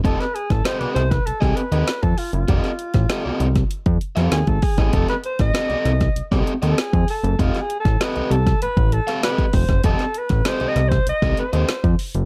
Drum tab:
HH |xxxxxxxxxxxxxxox|xxxxx-xxxxxxxxox|xxxxxxxxxxxxxxox|xxxxxxxxxxxxxxox|
SD |-o-oo-oo-o--o---|-o-oo--o---oo--o|-o-oo-oo-o--o---|-o-oo--o---oo--o|
BD |o--o---o-o---o--|o--o---o-o---ooo|o--o---o-o---o--|o--o---o-o---ooo|

HH |xxxxxxxxxxxxxxox|
SD |-o-oo-oo-o--o---|
BD |o--o---o-o---o--|